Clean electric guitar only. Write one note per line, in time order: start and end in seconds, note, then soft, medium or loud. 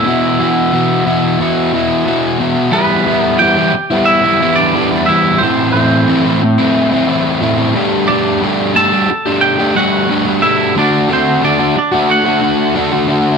0.00 2.03 E4 medium
0.00 2.04 E5 medium
2.73 3.37 B3 medium
2.73 3.25 B4 medium
3.25 3.42 A4 medium
3.39 4.04 G4 medium
3.39 4.03 G5 loud
4.05 4.54 E4 medium
4.05 4.55 E5 loud
4.56 5.05 D4 medium
4.56 5.06 D5 loud
5.06 5.39 E4 medium
5.06 5.42 E5 medium
5.38 5.73 C4 medium
5.38 5.71 C5 medium
5.72 7.72 C4 medium
5.72 7.70 C5 medium
8.08 8.72 D4 medium
8.08 8.77 D5 medium
8.76 9.39 A4 medium
8.76 9.41 A5 loud
9.41 9.74 G4 medium
9.41 9.76 G5 loud
9.76 10.40 F#4 medium
9.76 10.42 F#5 medium
10.42 10.74 E4 medium
10.42 10.77 E5 medium
10.78 11.08 D4 medium
10.78 11.12 D5 medium
11.12 11.42 C4 medium
11.12 11.44 C5 medium
11.44 11.75 D4 medium
11.44 11.77 D5 medium
11.78 12.08 D4 medium
11.78 12.12 D5 medium
12.10 12.73 F#4 medium
12.10 12.73 F#5 medium